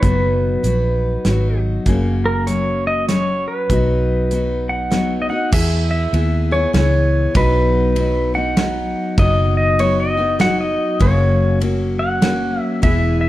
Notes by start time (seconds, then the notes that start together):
0.00 F#1 B2 F#3 B3 B4, kick, closed hi-hat
0.04 D#4 F#4
0.63 A#1 F#3 B3 D#4 F#4, closed hi-hat
1.25 G#1 F#3 B3 D#4 F#4, snare, closed hi-hat
1.86 F#1 F#2 C#3 F#3 A#3 C#4 F#4, kick, closed hi-hat
2.26 A#4
2.47 F#3 A#3 C#4 F#4 C#5, closed hi-hat
2.87 D#5
3.09 F#3 C#4 F#4 C#5, snare, closed hi-hat
3.48 B4
3.70 B1 B2 F#3 B3 D#4 F#4, kick, closed hi-hat
4.31 F#3 B3 D#4 F#4, closed hi-hat
4.69 F#5
4.91 F#3 B3 D#4 F#4, snare, closed hi-hat
5.22 D#5
5.29 B3 D#4 F#4 F#5
5.52 E2 E3 B3 E4 G#4 E5, kick, crash
5.91 E5
6.13 D#2 B3 E4 G#4, ride
6.51 B3 E4 G#4 C#5
6.73 C#2 E3 B3 E4 G#4 C#5, snare, ride
7.34 B1 B2 F#3 B3 D#4 F#4 B4, kick, ride
7.96 F#3 B3 D#4 F#4, ride
8.34 B3 D#4 F#4 F#5
8.57 F#3 B3 D#4 F#4, snare, ride
9.18 F#1 B2 F#3 B3 D#4 F#4 D#5, kick, ride
9.57 D#5
9.79 F#3 B3 D#4 F#4 C#5, ride
10.00 D#5
10.17 B3 D#4 F#4
10.39 F#3 B3 D#4 F#4 F#5, snare, ride
10.61 D#5
11.00 F#1 F#2 C#3 F#3 A#3 C#4 F#4 C#5, kick, ride
11.60 F#3 A#3 C#4 F#4, ride
11.99 F#5
12.22 F#3 A#3 C#4 F#4, snare, ride
12.60 E5
12.82 E1 E3 B3 E4 G#4 E5, kick, ride
13.21 E5